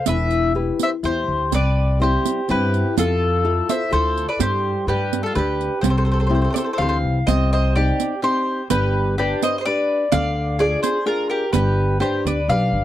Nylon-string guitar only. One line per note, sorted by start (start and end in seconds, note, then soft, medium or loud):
0.07 0.53 E3 medium
0.55 0.93 E4 soft
0.55 0.94 G4 soft
0.55 0.94 B4 medium
1.03 1.42 E4 soft
1.03 1.42 G4 soft
1.52 1.99 C3 medium
2.00 2.39 G3 soft
2.00 2.39 C4 soft
2.00 2.40 E4 medium
2.48 2.87 B3 soft
2.48 2.87 C4 soft
2.48 2.88 E4 soft
2.97 3.43 F3 medium
3.44 3.83 E4 soft
3.44 3.82 F4 soft
3.44 3.83 A4 medium
3.91 4.30 E4 soft
3.91 4.29 F4 soft
3.91 4.30 A4 medium
4.39 4.86 G3 medium
4.89 5.34 G3 medium
5.36 5.73 D4 soft
5.36 5.74 G4 soft
5.36 5.74 B4 medium
5.83 6.29 C3 medium
6.30 6.69 C4 medium
6.30 6.69 E4 soft
6.30 6.69 G4 medium
6.79 7.19 E3 soft
6.79 7.18 C4 soft
6.79 7.19 G4 soft
7.28 7.74 C3 medium
7.76 8.14 C4 medium
7.76 8.14 D#4 soft
7.76 8.14 G4 medium
8.23 8.61 C4 soft
8.23 8.61 D#4 soft
8.23 8.61 G4 soft
8.72 9.17 G3 medium
9.19 9.56 D4 medium
9.19 9.56 G4 soft
9.19 9.57 B4 medium
9.66 10.04 D4 medium
9.66 10.04 G4 soft
9.66 10.04 B4 soft
10.12 10.58 D3 medium
10.59 10.97 D4 medium
10.59 10.97 F4 soft
10.59 10.98 G#4 medium
11.05 11.44 D4 soft
11.05 11.44 F4 soft
11.05 11.44 G#4 medium
11.53 11.99 G3 medium
12.00 12.39 D4 soft
12.00 12.39 G4 soft
12.00 12.39 B4 soft
12.50 12.84 D4 soft
12.50 12.84 G4 soft
12.50 12.84 B4 soft